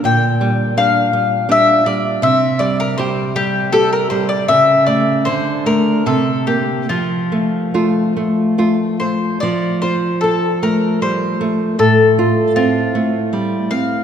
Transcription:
<<
  \new Staff \with { instrumentName = "Mandolin" } { \time 3/4 \key f \major \tempo 4 = 78 g''4 f''4 e''8 d''8 | e''8 d''16 bes'16 c''8 g'8 a'16 bes'16 c''16 d''16 | e''8 d''8 c''8 bes'8 a'8 g'8 | f'2~ f'8 c''8 |
d''8 c''8 a'8 bes'8 c''4 | a'4 f'4 r8 f''8 | }
  \new Staff \with { instrumentName = "Nylon-string guitar" } { \time 3/4 \key f \major bes,8 g8 <g d'>8 g8 <g d'>8 g8 | c8 g8 <g g'>8 g8 <g g'>8 g8 | cis8 a8 d8 a8 c8 bes8 | f8 a8 <a f'>8 a8 <a f'>8 a8 |
f8 f'8 a'8 a8 g8 a8 | a,8 f'8 c'8 a8 g8 c'8 | }
>>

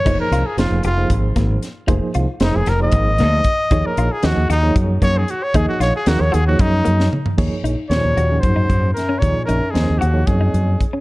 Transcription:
<<
  \new Staff \with { instrumentName = "Trumpet" } { \time 7/8 \key ees \dorian \tempo 4 = 114 des''16 bes'8 aes'16 f'8 f'8 r4. | r4 ees'16 aes'16 bes'16 ees''4.~ ees''16~ | ees''16 bes'8 aes'16 ges'8 ees'8 r8 des''16 aes'16 ges'16 des''16 | aes'16 ges'16 des''16 aes'16 ges'16 des''16 aes'16 ges'16 ees'4 r8 |
r4 des''4 c''4 bes'8 | des''8 bes'8 aes'8 ges'8 aes'4 r8 | }
  \new Staff \with { instrumentName = "Clean electric guitar" } { \time 7/8 \key ees \dorian ees'8 f'8 r8 g'8 r8 bes8 r8 | ees'8 f'8 r8 g'8 r8 bes8 r8 | ees'8 f'8 r8 ges'8 r8 bes8 r8 | ees'8 f'8 r8 ges'8 r8 bes8 r8 |
r8 ees'8 r8 ges'8 r16 ees'8 r8 des'16 | r8 ees'8 r8 ges'8 r16 ees'8 r8 des'16 | }
  \new Staff \with { instrumentName = "Reed electric piano" } { \time 7/8 \key ees \dorian <f bes ees' aes' c''>8. r16 <f bes ees' aes' c''>8 r16 <f bes ees' aes' c''>4~ <f bes ees' aes' c''>16 r8 | <f bes ees' aes' c''>8. r16 <f bes ees' aes' c''>8 r16 <f bes ees' aes' c''>4~ <f bes ees' aes' c''>16 r8 | <f bes ees' aes' des''>8. r16 <f bes ees' aes' ees''>8 r16 <f bes ees' aes' des''>4~ <f bes ees' aes' des''>16 r8 | <f bes ees' aes' ees''>8. r16 <f bes ees' aes' bes'>8 r16 <f bes ees' aes' des''>4~ <f bes ees' aes' des''>16 r8 |
<f bes ees' aes' des''>8. r16 <f bes ees' aes' c''>8 r16 <f bes des' ees' aes'>4~ <f bes des' ees' aes'>16 r8 | <f bes ees' aes' des''>8. r16 <f bes ees' aes' c''>8 r16 <f bes ees' aes' des''>4~ <f bes ees' aes' des''>16 r8 | }
  \new Staff \with { instrumentName = "Bass clarinet" } { \clef bass \time 7/8 \key ees \dorian r2. r8 | r2. r8 | r2. r8 | r2. r8 |
r4 bes,4 aes,4 ges,8 | bes,8 ges,8 f,8 ees,8 f,4 r8 | }
  \new Staff \with { instrumentName = "Fingered electric bass" } { \clef bass \time 7/8 \key ees \dorian f,,16 r16 c,16 r16 f,,16 f,,16 f,,8 aes,,8 aes,,8 r8 | f,,16 r16 c,16 r16 f,,16 f,,16 f,,8 aes,,8 d,8 r8 | ees,16 r16 bes,,16 r16 ees,16 ees,16 ees,8 ges,8 ges,8 r8 | ees,16 r16 bes,,16 r16 ees,16 ees,16 ees,8 ges,8 ges,8 r8 |
ees,16 r16 bes,,16 r16 ees,16 ees,16 ees,8 ges,8 ges,8 r8 | ees,16 r16 bes,,16 r16 ees,16 ees,16 ees,8 ges,8 ges,8 r8 | }
  \new DrumStaff \with { instrumentName = "Drums" } \drummode { \time 7/8 <cymc hh bd>8 hh8 <hh sn>8 hh8 <hh bd>8 <hh bd sn>8 <hh sn>8 | <hh bd>8 hh8 <hh sn>8 <hh sn>8 <hh bd>8 <hh sn>8 <hh bd>8 | <hh bd>8 hh8 <hh sn>8 hh8 <hh bd>8 <hh bd>8 hh8 | <hh bd>8 <hh sn>8 <hh sn>8 hh8 <hh bd>8 hh16 sn16 toml16 tomfh16 |
<cymc bd>8 hh8 <hh sn>8 hh8 <hh bd>8 <hh bd>8 <hh sn>8 | <hh bd>8 hh8 <hh sn>8 hh8 <hh bd>8 hh8 <hh bd>8 | }
>>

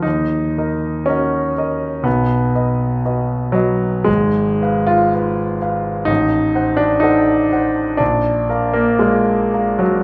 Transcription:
\new Staff \with { instrumentName = "Grand piano" } { \time 2/4 \key ees \minor \tempo 4 = 60 << { ees,8 <bes' ees''>8 <ges' bes' ees''>8 <bes' ees''>8 | b,,8 <b' dis''>8 <fis' b' dis''>8 <b' dis''>8 | aes,,8 <ces'' f''>8 <f' ces'' f''>8 <ces'' f''>8 | a,,8 <c'' fis''>8 <a' c'' fis''>8 <c'' fis''>8 |
bes,,8 <bes' f''>8 <f' bes' f''>8 <bes' f''>8 | } \\ { ees'4 des'4 | b4. fis8 | aes8. f'4~ f'16 | ees'8. d'16 ees'4 |
d'8. bes16 aes8. ges16 | } >> }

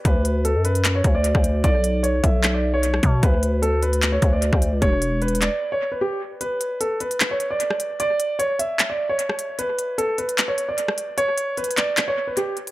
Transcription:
<<
  \new Staff \with { instrumentName = "Grand piano" } { \time 4/4 \key b \minor \tempo 4 = 151 b'4 a'8 b'8. cis''8 d''4~ d''16 | d''4 cis''8 e''8. d''8 cis''4~ cis''16 | b'4 a'8 b'8. cis''8 d''4~ d''16 | cis''4 b'8 d''8. cis''8 b'16 g'8 r8 |
b'4 a'8 b'8. cis''8 d''4~ d''16 | d''4 cis''8 e''8. d''8 cis''4~ cis''16 | b'4 a'8 b'8. cis''8 d''4~ d''16 | cis''4 b'8 d''8. cis''8 b'16 g'8 r8 | }
  \new Staff \with { instrumentName = "808-style bass" } { \clef bass \time 4/4 \key b \minor d,4~ d,16 fis,4~ fis,16 d,8. d,8. | b,,4. b,,2 b,8 | d,2~ d,8 d,8. d,8 cis,16 | e,,4.~ e,,16 r2 r16 |
r1 | r1 | r1 | r1 | }
  \new DrumStaff \with { instrumentName = "Drums" } \drummode { \time 4/4 <hh bd>8 hh8 hh8 hh16 hh16 <hc hh>8 <hh bd>8 hh16 <bd ss>16 hh8 | <hh bd>8 hh8 hh8 <hh bd>8 <hc hh>4 hh16 ss16 <hh bd>8 | <hh bd>8 hh8 hh8 hh16 hh16 <hc hh>8 <hh bd>8 hh16 <bd ss>16 hh8 | <hh bd>8 hh8 \tuplet 3/2 { hh16 hh16 hh16 <hc hh>16 r16 r16 } r4 r4 |
hh8 hh8 hh8 hh16 hh16 <hc hh>8 hh8 hh16 ss16 hh8 | hh8 hh8 hh8 hh8 <hc hh>4 hh16 ss16 hh8 | hh8 hh8 hh8 hh16 hh16 <hc hh>8 hh8 hh16 ss16 hh8 | hh8 hh8 \tuplet 3/2 { hh16 hh16 hh16 <hc hh>16 r16 r16 } <hc hh>4 hh8 hh16 hh16 | }
>>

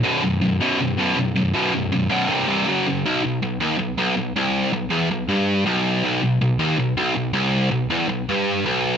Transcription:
\new Staff \with { instrumentName = "Distorted electric guitar" } { \clef bass \time 4/4 \tempo 4 = 160 <b,, fis, b,>8 <b,, fis,>8 <b,, fis,>8 <b,, fis, b,>8 <b,, fis,>8 <b,, fis, b,>8 <b,, fis,>8 <b,, fis,>8 | <b,, fis, b,>8 <b,, fis,>8 <b,, fis,>8 <b,, fis, b,>8 <c, g, c>8 <c, g, c>8 <fis, cis fis>8 <fis, cis>8 | b,,8 b,,8 b,,8 dis,8 b,,8 b,,8 b,,8 c,8~ | c,8 b,,8 e,8 b,,8 g,4 b,,4 |
b,,8 b,,8 b,,8 dis,8 b,,8 b,,8 b,,8 c,8~ | c,8 b,,8 e,8 b,,8 g,4 b,,4 | }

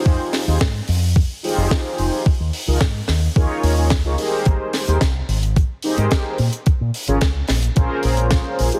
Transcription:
<<
  \new Staff \with { instrumentName = "Analog polysynth" } { \time 4/4 \key aes \major \tempo 4 = 109 <ees' f' g' aes' c''>8. <ees' f' g' aes' c''>16 r4. <ees' f' g' aes' c''>4. | r8. <ees' f' aes' bes' ees''>16 r4 <ees' f' aes' bes' des''>8. <ees' f' aes' bes' des''>16 r16 <ees' f' aes' bes' des''>16 <ees' g' aes' bes' c''>8~ | <ees' g' aes' bes' c''>8. <ees' g' aes' bes' c''>16 r4. <ees' g' aes' bes' c''>4 r8 | r8. <des' f' aes' bes' des''>16 r4 <des' f' aes' bes' c''>4.~ <des' f' aes' bes' c''>16 <ees' f' g' aes' c''>16 | }
  \new Staff \with { instrumentName = "Fingered electric bass" } { \clef bass \time 4/4 \key aes \major f,16 r8 ees,16 r8 f,8 r8. f,,16 r8 f,,16 r16 | r16 ees,16 r16 des,16 r8 ees,16 r16 ees,16 r16 ees,8. des,16 r8 | aes,,16 r8 ees,16 r8 aes,,8 r8. aes,16 r8 bes,16 r16 | r16 bes,16 r16 aes,,16 r8 bes,,16 r16 bes,,16 r16 bes,,8 r8 bes,,16 r16 | }
  \new DrumStaff \with { instrumentName = "Drums" } \drummode { \time 4/4 bd8 <hho sn>8 <bd sn>8 hho8 bd8 hho8 <bd sn>8 hho8 | bd8 hho8 <bd sn>8 <hho sn>8 bd8 hho8 <bd sn>8 hho8 | <hh bd>8 <hho sn>16 hh16 <hh bd sn>8 hho16 hh16 <hh bd>8 hho16 hh16 <hh bd sn>8 hho16 hh16 | <hh bd>8 hho16 hh16 <hh bd sn>8 <hho sn>16 hh16 <hh bd>8 hho16 hh16 <hh bd sn>8 hho16 hh16 | }
>>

